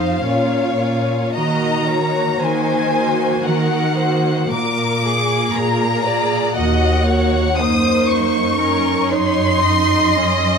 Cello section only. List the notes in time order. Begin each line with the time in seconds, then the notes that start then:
Already playing: F2
0.22 A#2
1.34 D#3
2.39 D#3
3.44 D#3
4.51 A#2
5.54 A#2
6.56 D#2
7.59 F#2